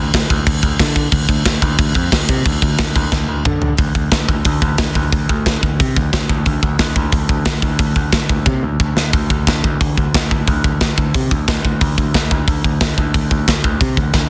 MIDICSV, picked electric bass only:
0, 0, Header, 1, 2, 480
1, 0, Start_track
1, 0, Tempo, 333519
1, 1631, Time_signature, 4, 2, 24, 8
1, 20568, End_track
2, 0, Start_track
2, 0, Title_t, "Picked electric bass"
2, 0, Program_c, 0, 34
2, 0, Note_on_c, 0, 38, 78
2, 146, Note_off_c, 0, 38, 0
2, 200, Note_on_c, 0, 38, 86
2, 388, Note_off_c, 0, 38, 0
2, 435, Note_on_c, 0, 38, 94
2, 624, Note_off_c, 0, 38, 0
2, 672, Note_on_c, 0, 38, 91
2, 862, Note_off_c, 0, 38, 0
2, 905, Note_on_c, 0, 38, 90
2, 1098, Note_off_c, 0, 38, 0
2, 1150, Note_on_c, 0, 50, 89
2, 1530, Note_off_c, 0, 50, 0
2, 1612, Note_on_c, 0, 38, 103
2, 1809, Note_off_c, 0, 38, 0
2, 1853, Note_on_c, 0, 38, 88
2, 2049, Note_off_c, 0, 38, 0
2, 2096, Note_on_c, 0, 38, 83
2, 2291, Note_off_c, 0, 38, 0
2, 2331, Note_on_c, 0, 38, 98
2, 2527, Note_off_c, 0, 38, 0
2, 2570, Note_on_c, 0, 38, 87
2, 2766, Note_off_c, 0, 38, 0
2, 2814, Note_on_c, 0, 41, 87
2, 3009, Note_off_c, 0, 41, 0
2, 3057, Note_on_c, 0, 38, 88
2, 3250, Note_off_c, 0, 38, 0
2, 3301, Note_on_c, 0, 48, 103
2, 3493, Note_off_c, 0, 48, 0
2, 3538, Note_on_c, 0, 38, 106
2, 3731, Note_off_c, 0, 38, 0
2, 3782, Note_on_c, 0, 38, 84
2, 3973, Note_off_c, 0, 38, 0
2, 4021, Note_on_c, 0, 38, 73
2, 4212, Note_off_c, 0, 38, 0
2, 4258, Note_on_c, 0, 38, 96
2, 4450, Note_off_c, 0, 38, 0
2, 4495, Note_on_c, 0, 38, 98
2, 4688, Note_off_c, 0, 38, 0
2, 4727, Note_on_c, 0, 38, 91
2, 4923, Note_off_c, 0, 38, 0
2, 4974, Note_on_c, 0, 50, 90
2, 5358, Note_off_c, 0, 50, 0
2, 5446, Note_on_c, 0, 38, 94
2, 5674, Note_off_c, 0, 38, 0
2, 5682, Note_on_c, 0, 38, 70
2, 5921, Note_off_c, 0, 38, 0
2, 5927, Note_on_c, 0, 38, 83
2, 6154, Note_off_c, 0, 38, 0
2, 6163, Note_on_c, 0, 38, 91
2, 6401, Note_off_c, 0, 38, 0
2, 6414, Note_on_c, 0, 38, 93
2, 6638, Note_off_c, 0, 38, 0
2, 6646, Note_on_c, 0, 38, 89
2, 6877, Note_off_c, 0, 38, 0
2, 6886, Note_on_c, 0, 38, 73
2, 7123, Note_off_c, 0, 38, 0
2, 7137, Note_on_c, 0, 38, 97
2, 7366, Note_off_c, 0, 38, 0
2, 7374, Note_on_c, 0, 38, 108
2, 7608, Note_off_c, 0, 38, 0
2, 7621, Note_on_c, 0, 38, 84
2, 7852, Note_off_c, 0, 38, 0
2, 7863, Note_on_c, 0, 38, 84
2, 8092, Note_off_c, 0, 38, 0
2, 8099, Note_on_c, 0, 38, 93
2, 8331, Note_off_c, 0, 38, 0
2, 8349, Note_on_c, 0, 48, 85
2, 8576, Note_off_c, 0, 48, 0
2, 8591, Note_on_c, 0, 38, 96
2, 8809, Note_off_c, 0, 38, 0
2, 8817, Note_on_c, 0, 38, 74
2, 9050, Note_off_c, 0, 38, 0
2, 9057, Note_on_c, 0, 38, 103
2, 9290, Note_off_c, 0, 38, 0
2, 9303, Note_on_c, 0, 38, 92
2, 9527, Note_off_c, 0, 38, 0
2, 9536, Note_on_c, 0, 38, 85
2, 9762, Note_off_c, 0, 38, 0
2, 9770, Note_on_c, 0, 38, 82
2, 10007, Note_off_c, 0, 38, 0
2, 10019, Note_on_c, 0, 38, 93
2, 10247, Note_off_c, 0, 38, 0
2, 10255, Note_on_c, 0, 38, 92
2, 10486, Note_off_c, 0, 38, 0
2, 10495, Note_on_c, 0, 38, 86
2, 10730, Note_off_c, 0, 38, 0
2, 10738, Note_on_c, 0, 38, 83
2, 10972, Note_off_c, 0, 38, 0
2, 10980, Note_on_c, 0, 38, 88
2, 11213, Note_off_c, 0, 38, 0
2, 11221, Note_on_c, 0, 38, 101
2, 11446, Note_off_c, 0, 38, 0
2, 11454, Note_on_c, 0, 38, 86
2, 11690, Note_off_c, 0, 38, 0
2, 11699, Note_on_c, 0, 38, 73
2, 11933, Note_off_c, 0, 38, 0
2, 11939, Note_on_c, 0, 38, 93
2, 12173, Note_off_c, 0, 38, 0
2, 12179, Note_on_c, 0, 48, 81
2, 12413, Note_off_c, 0, 48, 0
2, 12419, Note_on_c, 0, 38, 79
2, 12653, Note_off_c, 0, 38, 0
2, 12668, Note_on_c, 0, 38, 80
2, 12885, Note_off_c, 0, 38, 0
2, 12893, Note_on_c, 0, 38, 93
2, 13130, Note_off_c, 0, 38, 0
2, 13143, Note_on_c, 0, 38, 100
2, 13375, Note_off_c, 0, 38, 0
2, 13396, Note_on_c, 0, 38, 73
2, 13622, Note_off_c, 0, 38, 0
2, 13629, Note_on_c, 0, 38, 78
2, 13859, Note_off_c, 0, 38, 0
2, 13870, Note_on_c, 0, 38, 96
2, 14099, Note_off_c, 0, 38, 0
2, 14115, Note_on_c, 0, 38, 87
2, 14342, Note_off_c, 0, 38, 0
2, 14361, Note_on_c, 0, 38, 96
2, 14585, Note_off_c, 0, 38, 0
2, 14598, Note_on_c, 0, 38, 79
2, 14824, Note_off_c, 0, 38, 0
2, 14845, Note_on_c, 0, 38, 91
2, 15067, Note_off_c, 0, 38, 0
2, 15081, Note_on_c, 0, 38, 90
2, 15305, Note_off_c, 0, 38, 0
2, 15318, Note_on_c, 0, 38, 79
2, 15544, Note_off_c, 0, 38, 0
2, 15561, Note_on_c, 0, 38, 87
2, 15786, Note_off_c, 0, 38, 0
2, 15807, Note_on_c, 0, 38, 98
2, 16029, Note_off_c, 0, 38, 0
2, 16047, Note_on_c, 0, 48, 82
2, 16269, Note_off_c, 0, 48, 0
2, 16283, Note_on_c, 0, 38, 79
2, 16507, Note_off_c, 0, 38, 0
2, 16521, Note_on_c, 0, 38, 87
2, 16746, Note_off_c, 0, 38, 0
2, 16763, Note_on_c, 0, 38, 90
2, 16987, Note_off_c, 0, 38, 0
2, 16998, Note_on_c, 0, 38, 104
2, 17225, Note_off_c, 0, 38, 0
2, 17239, Note_on_c, 0, 38, 80
2, 17465, Note_off_c, 0, 38, 0
2, 17487, Note_on_c, 0, 38, 83
2, 17709, Note_off_c, 0, 38, 0
2, 17723, Note_on_c, 0, 38, 96
2, 17947, Note_off_c, 0, 38, 0
2, 17957, Note_on_c, 0, 38, 92
2, 18184, Note_off_c, 0, 38, 0
2, 18194, Note_on_c, 0, 38, 87
2, 18423, Note_off_c, 0, 38, 0
2, 18438, Note_on_c, 0, 38, 92
2, 18665, Note_off_c, 0, 38, 0
2, 18679, Note_on_c, 0, 38, 96
2, 18905, Note_off_c, 0, 38, 0
2, 18920, Note_on_c, 0, 38, 90
2, 19146, Note_off_c, 0, 38, 0
2, 19158, Note_on_c, 0, 38, 84
2, 19385, Note_off_c, 0, 38, 0
2, 19405, Note_on_c, 0, 38, 76
2, 19629, Note_off_c, 0, 38, 0
2, 19637, Note_on_c, 0, 38, 93
2, 19864, Note_off_c, 0, 38, 0
2, 19874, Note_on_c, 0, 48, 87
2, 20098, Note_off_c, 0, 48, 0
2, 20106, Note_on_c, 0, 38, 87
2, 20338, Note_off_c, 0, 38, 0
2, 20352, Note_on_c, 0, 38, 83
2, 20568, Note_off_c, 0, 38, 0
2, 20568, End_track
0, 0, End_of_file